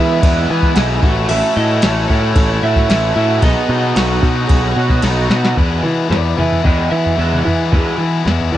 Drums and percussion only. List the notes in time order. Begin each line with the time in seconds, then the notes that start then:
0.23 kick, ride
0.62 kick
0.76 snare, ride
1.02 kick
1.29 crash
1.82 snare, ride
2.09 kick
2.36 kick, ride
2.76 kick, snare
2.90 snare, ride
3.42 kick, ride
3.96 snare, ride
4.23 kick
4.49 kick, ride
4.90 kick, snare
5.02 snare, ride
5.31 snare
5.44 snare
5.57 kick, floor tom
5.85 mid tom
6.12 snare, floor tom
6.39 floor tom, mid tom
6.52 floor tom
6.65 kick, floor tom
7.06 floor tom
7.33 mid tom
7.47 floor tom
7.73 kick, floor tom
8.27 snare, floor tom
8.40 floor tom